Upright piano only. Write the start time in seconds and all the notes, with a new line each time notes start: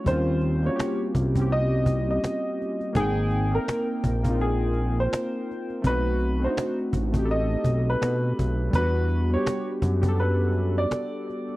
0.07 C5
0.66 C#5
1.52 D#5
2.11 D#5
2.96 G#4
3.55 A#4
4.41 G#4
5.00 C5
5.87 B4
6.44 C5
7.31 D#5
7.90 B4
8.75 B4
9.34 C#5
10.20 B4
10.78 D5